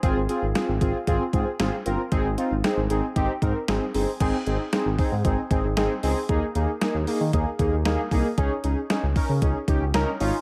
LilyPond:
<<
  \new Staff \with { instrumentName = "Analog polysynth" } { \time 4/4 \key aes \major \tempo 4 = 115 <c' f' aes'>8 <c' f' aes'>8 <c' f' aes'>8 <c' f' aes'>8 <c' f' aes'>8 <c' f' aes'>8 <c' f' aes'>8 <c' f' bes'>8 | <c' ees' aes'>8 <c' ees' f'>8 <c' ees' aes'>8 <c' ees' aes'>8 <c' ees' g'>8 <c' ees' bes'>8 <c' ees' aes'>8 <c' ees' aes'>8 | <c' ees' aes'>8 <c' ees' aes'>8 <c' ees' aes'>8 <c' ees' aes'>8 <c' ees' aes'>8 <c' ees' aes'>8 <c' ees' aes'>8 <c' ees' aes'>8 | <bes ees' aes'>8 <bes ees' aes'>8 <bes ees' aes'>8 <bes ees' aes'>8 <bes ees' aes'>8 <bes ees' aes'>8 <bes ees' aes'>8 <bes ees' aes'>8 |
<des' ees' aes'>8 <des' ees' aes'>8 <des' ees' aes'>8 <des' ees' bes'>8 <des' ees' aes'>8 <des' ees' g'>8 <des' ees' bes'>8 <des' ees' f'>8 | }
  \new Staff \with { instrumentName = "Analog synth bass" } { \clef bass \time 4/4 \key aes \major aes,,16 aes,,16 r16 aes,,16 r16 aes,,16 aes,,16 r16 aes,,16 r16 aes,16 r16 aes,,16 r16 g,,16 r16 | aes,,16 aes,,16 r16 aes,,16 r16 aes,,16 aes,,16 r16 aes,,16 r16 aes,16 r16 aes,,16 r16 g,,16 r16 | aes,,16 r16 aes,,16 r8 aes,,16 r16 aes,16 aes,,16 r16 aes,,16 aes,,16 aes,,16 r16 des,16 r16 | ees,16 r16 ees,16 r8 ees,16 r16 ees16 ees,16 r16 ees,16 ees,16 ees,16 r16 c,16 r16 |
des,16 r16 des,16 r8 des,16 r16 des16 des,16 r16 des,16 des,16 des,16 r16 aes,,16 r16 | }
  \new DrumStaff \with { instrumentName = "Drums" } \drummode { \time 4/4 <hh bd>8 hh8 <hh sn>8 <hh bd>8 <hh bd>8 <hh bd>8 <hh sn>8 hh8 | <hh bd>8 hh8 <hh sn>8 hh8 <hh bd>8 <hh bd>8 <hh sn>8 hho8 | <cymc hh bd>8 hh8 <hh sn>8 <hho bd>8 <hh bd>8 <hh bd>8 <hh sn>8 hho8 | <hh bd>8 hh8 <hh sn>8 hho8 <hh bd>8 <hh bd>8 <hh sn>8 <hho bd>8 |
<hh bd>8 hh8 <hh sn>8 <hho bd>8 <hh bd>8 <hh bd>8 <hh sn>8 hho8 | }
>>